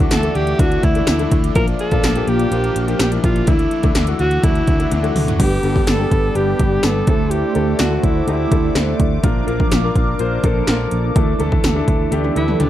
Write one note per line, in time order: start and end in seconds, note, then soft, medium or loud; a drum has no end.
0.00 0.58 D3 medium
0.00 0.23 E3 medium
0.00 0.23 A3 medium
0.00 0.36 A3 medium
0.00 0.23 D4 medium
0.00 0.34 D4 medium
0.00 0.24 E4 medium
0.00 0.15 F#4 medium
0.00 1.53 A4 medium
0.00 5.36 D5 medium
0.00 1.53 E5 medium
0.00 5.36 D6 medium
0.11 0.29 D2 loud
0.11 0.37 A4 loud
0.11 snare loud
0.11 closed hi-hat loud
0.11 tambourine medium
0.23 0.46 E3 medium
0.23 0.47 A3 medium
0.23 0.47 D4 medium
0.23 0.47 E4 medium
0.23 closed hi-hat medium
0.35 0.53 D2 medium
0.35 0.59 A3 soft
0.35 0.59 D4 medium
0.35 0.61 G4 loud
0.35 closed hi-hat medium
0.47 closed hi-hat medium
0.58 0.77 D2 medium
0.58 1.06 D3 medium
0.58 0.83 E3 medium
0.58 0.83 A3 medium
0.58 1.07 A3 medium
0.58 0.83 D4 medium
0.58 1.09 D4 medium
0.58 0.83 E4 medium
0.58 0.85 F#4 loud
0.58 kick loud
0.58 closed hi-hat medium
0.72 closed hi-hat soft
0.83 1.01 D2 medium
0.83 1.08 E4 medium
0.83 kick medium
0.83 closed hi-hat medium
0.95 1.11 E3 medium
0.95 1.11 A3 medium
0.95 1.11 D4 medium
0.95 1.11 E4 medium
0.95 closed hi-hat medium
1.07 1.25 D2 loud
1.07 1.57 D3 medium
1.07 1.56 A3 medium
1.07 3.49 D4 medium
1.07 1.41 E4 medium
1.07 snare loud
1.07 closed hi-hat medium
1.07 tambourine medium
1.19 1.43 E3 medium
1.19 1.43 A3 medium
1.19 1.43 D4 medium
1.19 1.43 E4 medium
1.19 closed hi-hat soft
1.31 1.49 D2 loud
1.31 kick medium
1.31 closed hi-hat medium
1.44 closed hi-hat medium
1.55 1.73 A#1 loud
1.55 2.50 A#2 medium
1.55 1.79 F3 medium
1.55 1.66 F3 medium
1.55 2.52 F3 medium
1.55 3.45 A#3 medium
1.55 1.79 A#3 medium
1.55 1.66 D4 medium
1.55 1.79 D4 medium
1.55 1.79 F4 medium
1.55 1.66 A#4 loud
1.55 1.66 A#4 medium
1.55 3.46 F5 medium
1.55 kick loud
1.55 closed hi-hat loud
1.59 2.53 A#3 medium
1.68 closed hi-hat soft
1.79 2.30 A4 loud
1.79 closed hi-hat medium
1.91 2.00 A#1 medium
1.91 2.07 F3 medium
1.91 2.02 A#3 loud
1.91 2.07 A#3 medium
1.91 2.08 D4 medium
1.91 2.02 F4 loud
1.91 2.08 F4 medium
1.91 2.02 D5 loud
1.91 kick medium
1.91 closed hi-hat medium
2.03 2.21 A#1 loud
2.03 snare loud
2.03 closed hi-hat loud
2.03 tambourine medium
2.15 2.39 F3 medium
2.15 2.39 A#3 medium
2.15 2.39 D4 medium
2.15 2.39 G4 medium
2.15 closed hi-hat medium
2.27 2.45 A#1 loud
2.27 2.48 A#3 loud
2.27 2.48 F4 loud
2.27 3.00 G4 loud
2.27 2.48 D5 loud
2.27 closed hi-hat medium
2.39 closed hi-hat soft
2.51 2.69 A#1 loud
2.51 2.98 A#2 medium
2.51 2.75 F3 medium
2.51 3.00 F3 medium
2.51 2.75 A#3 medium
2.51 3.01 A#3 medium
2.51 2.75 D4 medium
2.51 2.75 F4 medium
2.51 closed hi-hat medium
2.64 closed hi-hat soft
2.76 2.93 A#1 medium
2.76 closed hi-hat medium
2.87 3.03 F3 medium
2.87 3.03 A#3 medium
2.87 3.03 D4 medium
2.87 3.04 G4 medium
2.87 closed hi-hat medium
2.99 3.17 A#1 loud
2.99 3.47 A#2 medium
2.99 3.47 F3 medium
2.99 3.48 A#3 medium
2.99 3.11 G4 medium
2.99 snare loud
2.99 closed hi-hat medium
2.99 tambourine medium
3.11 3.35 F3 medium
3.11 3.35 A#3 medium
3.11 3.35 D4 medium
3.11 3.35 E4 medium
3.11 closed hi-hat medium
3.24 3.41 A#1 medium
3.24 3.50 F4 medium
3.24 kick medium
3.24 closed hi-hat medium
3.36 closed hi-hat medium
3.47 3.65 D2 loud
3.47 4.43 D3 medium
3.47 3.71 E3 medium
3.47 3.71 A3 medium
3.47 4.20 A3 medium
3.47 3.71 D4 medium
3.47 4.19 D4 loud
3.47 3.71 E4 medium
3.47 3.96 E4 medium
3.47 5.38 A4 medium
3.47 5.38 E5 medium
3.47 kick loud
3.47 closed hi-hat loud
3.59 closed hi-hat soft
3.71 closed hi-hat medium
3.83 3.92 D2 loud
3.83 3.99 E3 medium
3.83 3.99 A3 medium
3.83 3.99 D4 medium
3.83 3.99 E4 medium
3.83 kick medium
3.83 closed hi-hat medium
3.95 4.13 D2 loud
3.95 snare loud
3.95 closed hi-hat medium
3.95 tambourine medium
4.07 4.31 E3 medium
4.07 4.31 A3 medium
4.07 4.31 D4 medium
4.07 4.31 F#4 medium
4.07 closed hi-hat medium
4.19 4.37 D2 loud
4.19 4.43 A3 soft
4.19 4.43 D4 medium
4.19 4.45 F#4 loud
4.19 closed hi-hat medium
4.31 closed hi-hat soft
4.43 4.61 D2 loud
4.43 4.91 D3 medium
4.43 4.67 E3 medium
4.43 4.67 A3 medium
4.43 4.91 A3 medium
4.43 4.67 D4 medium
4.43 4.94 D4 medium
4.43 5.15 E4 loud
4.43 4.67 F#4 medium
4.43 kick loud
4.43 closed hi-hat medium
4.55 closed hi-hat soft
4.67 4.85 D2 medium
4.67 kick medium
4.67 closed hi-hat medium
4.79 4.95 E3 medium
4.79 4.95 A3 medium
4.79 4.95 D4 medium
4.79 4.95 E4 medium
4.79 closed hi-hat soft
4.91 5.09 D2 loud
4.91 5.91 D3 medium
4.91 5.40 A3 medium
4.91 5.91 D4 medium
4.91 closed hi-hat medium
4.91 high tom medium
5.03 5.26 E3 medium
5.03 5.27 A3 medium
5.03 5.27 D4 medium
5.03 5.27 F#4 medium
5.03 closed hi-hat medium
5.15 5.33 D2 medium
5.15 mid tom medium
5.15 open hi-hat medium
5.28 closed hi-hat medium
5.28 floor tom medium
5.39 5.57 G1 loud
5.39 5.55 G3 medium
5.39 7.04 G3 medium
5.39 5.55 B3 medium
5.39 5.55 D4 medium
5.39 7.04 D4 medium
5.39 5.55 G4 medium
5.39 5.89 G4 loud
5.39 7.06 B4 medium
5.39 7.04 B4 medium
5.39 11.11 D5 medium
5.39 7.06 G5 medium
5.39 12.70 D6 medium
5.39 kick loud
5.39 closed hi-hat medium
5.39 crash loud
5.63 5.81 G1 loud
5.63 5.86 G3 medium
5.63 5.87 B3 medium
5.63 5.87 D4 medium
5.63 5.87 A4 medium
5.63 closed hi-hat medium
5.76 kick medium
5.87 6.05 G1 loud
5.87 6.37 A4 loud
5.87 snare loud
5.87 closed hi-hat medium
5.87 tambourine medium
5.99 6.23 G3 medium
5.99 6.23 B3 medium
5.99 6.23 D4 medium
5.99 6.23 A4 medium
6.11 6.29 G1 medium
6.11 kick medium
6.11 closed hi-hat medium
6.35 6.53 G1 loud
6.35 6.51 G3 medium
6.35 6.51 B3 medium
6.35 6.51 D4 medium
6.35 6.85 G4 loud
6.35 6.51 G4 medium
6.35 closed hi-hat medium
6.59 6.77 G1 loud
6.59 6.75 G3 medium
6.59 6.75 B3 medium
6.59 6.75 D4 medium
6.59 6.75 G4 medium
6.59 kick medium
6.59 closed hi-hat medium
6.83 7.01 G1 loud
6.83 7.07 G3 medium
6.83 7.08 B3 medium
6.83 7.06 D4 medium
6.83 7.08 G4 medium
6.83 7.32 A4 loud
6.83 snare loud
6.83 closed hi-hat medium
6.83 tambourine medium
7.07 7.42 D2 medium
7.07 7.46 A3 medium
7.07 9.20 A3 medium
7.07 7.46 D4 medium
7.07 9.20 E4 medium
7.07 7.46 E4 medium
7.07 9.22 A4 medium
7.07 7.46 A4 medium
7.07 9.20 C5 medium
7.07 9.22 E5 medium
7.07 kick loud
7.07 closed hi-hat medium
7.30 7.78 G4 loud
7.30 closed hi-hat loud
7.55 7.73 D2 loud
7.55 7.79 A3 medium
7.55 7.79 D4 medium
7.55 7.79 E4 medium
7.55 7.79 A4 medium
7.55 closed hi-hat medium
7.79 7.97 D2 loud
7.79 8.05 F#4 medium
7.79 snare loud
7.79 closed hi-hat medium
7.79 tambourine medium
7.91 8.15 A3 medium
7.91 8.15 D4 medium
7.91 8.15 E4 medium
7.91 8.15 F#4 medium
8.03 8.21 D2 medium
8.03 8.27 E4 medium
8.03 kick medium
8.03 closed hi-hat medium
8.27 8.45 D2 loud
8.27 8.43 A3 medium
8.27 8.43 D4 medium
8.27 8.43 E4 medium
8.27 8.96 E4 medium
8.27 8.43 G4 medium
8.27 closed hi-hat medium
8.51 8.69 D2 medium
8.51 8.67 A3 medium
8.51 8.67 D4 medium
8.51 8.67 E4 medium
8.51 8.68 A4 medium
8.51 kick medium
8.51 closed hi-hat medium
8.75 8.93 D2 loud
8.75 9.06 A3 medium
8.75 9.07 D4 medium
8.75 9.07 E4 medium
8.75 9.07 A4 medium
8.75 snare loud
8.75 closed hi-hat medium
8.75 tambourine medium
9.00 9.17 D2 medium
9.00 kick medium
9.00 closed hi-hat medium
9.22 9.41 A#1 loud
9.22 11.12 F3 medium
9.22 9.39 A#3 medium
9.22 9.39 D4 medium
9.22 11.12 D4 medium
9.22 9.39 F4 medium
9.22 11.14 A#4 medium
9.22 11.12 A#4 medium
9.22 9.39 A#4 medium
9.22 11.13 F5 medium
9.22 kick loud
9.22 closed hi-hat loud
9.47 9.65 A#1 loud
9.47 9.70 A#3 medium
9.47 9.71 D4 medium
9.47 9.71 F4 medium
9.47 9.71 A#4 medium
9.47 closed hi-hat medium
9.60 kick medium
9.71 9.89 A#1 loud
9.71 snare loud
9.71 closed hi-hat medium
9.71 tambourine medium
9.83 10.07 A#3 medium
9.83 10.07 D4 medium
9.83 10.07 F4 medium
9.83 10.07 A#4 medium
9.95 10.13 A#1 medium
9.95 kick medium
9.95 closed hi-hat medium
10.19 10.37 A#1 medium
10.19 10.35 A#3 medium
10.19 10.35 D4 medium
10.19 10.35 F4 medium
10.19 10.35 C5 loud
10.19 closed hi-hat medium
10.43 10.61 A#1 medium
10.43 10.59 A#3 medium
10.43 10.59 D4 medium
10.43 10.59 F4 medium
10.43 10.60 A4 medium
10.43 kick medium
10.43 closed hi-hat medium
10.67 10.85 A#1 loud
10.67 10.99 A#3 medium
10.67 10.99 D4 medium
10.67 10.99 F4 medium
10.67 10.99 A#4 medium
10.67 snare loud
10.67 closed hi-hat medium
10.67 tambourine medium
10.91 11.09 A#1 medium
10.91 closed hi-hat medium
11.16 11.33 D2 loud
11.16 12.70 E3 medium
11.16 11.31 A3 medium
11.16 12.70 D4 medium
11.16 11.31 D4 medium
11.16 11.31 E4 medium
11.16 12.70 A4 medium
11.16 11.32 A4 medium
11.16 12.70 D5 medium
11.16 12.70 E5 medium
11.16 kick loud
11.16 closed hi-hat loud
11.39 11.57 D2 loud
11.39 11.63 A3 medium
11.39 11.63 D4 medium
11.39 11.63 E4 medium
11.39 11.63 A4 loud
11.39 closed hi-hat medium
11.52 kick medium
11.64 11.81 D2 loud
11.64 snare loud
11.64 closed hi-hat medium
11.64 tambourine medium
11.75 11.99 A3 medium
11.75 11.99 D4 medium
11.75 11.99 E4 medium
11.75 11.99 A4 medium
11.88 12.05 D2 medium
11.88 kick medium
11.88 closed hi-hat medium
12.11 12.29 D2 loud
12.11 12.27 A3 medium
12.11 12.27 D4 medium
12.11 12.27 E4 medium
12.11 12.28 G4 medium
12.11 closed hi-hat medium
12.11 high tom medium
12.24 high tom medium
12.35 12.53 D2 medium
12.35 12.51 A3 medium
12.35 12.51 D4 medium
12.35 12.51 E4 medium
12.35 12.63 E4 medium
12.35 12.52 B4 medium
12.35 closed hi-hat medium
12.48 mid tom medium
12.59 12.70 D2 loud
12.59 12.70 A3 medium
12.59 12.70 D4 medium
12.59 12.70 E4 medium
12.59 12.70 G4 medium
12.59 closed hi-hat medium
12.59 mid tom medium